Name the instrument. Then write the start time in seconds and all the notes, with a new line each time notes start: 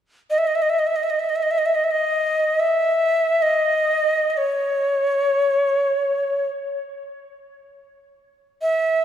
native american-style wooden flute
0.30 D#5
0.38 E5
0.47 D#5
0.55 E5
0.62 D#5
0.70 E5
0.79 D#5
0.87 E5
0.96 D#5
1.03 E5
1.10 D#5
1.19 E5
1.29 D#5
1.36 E5
1.43 D#5
1.51 E5
1.58 D#5
1.66 E5
1.75 D#5
1.84 E5
1.91 D#5
2.60 E5
3.42 D#5
4.30 D#5
4.37 C#5
8.62 E5